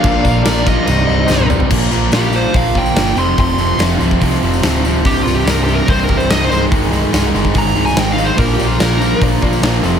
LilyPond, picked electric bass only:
\new Staff \with { instrumentName = "Picked electric bass" } { \clef bass \time 4/4 \key bes \mixolydian \tempo 4 = 144 bes,,8 bes,,8 bes,,4 c,,8 c,,8 c,,4 | bes,,8 bes,,8 bes,,4 bes,,8 bes,,8 g,,8 f,,8 | f,,4 f,,8 c,,8 c,8 f,,8 d,,4 | c,,8 c,,8 c,,4 c,,8 c,,8 c,,8 c,,8 |
c,,4 c,,8 g,,8 g,,8 c,,8 aes,,4 | bes,,8 bes,,8 bes,,4 bes,,8 bes,,8 bes,,8 f,,8 | }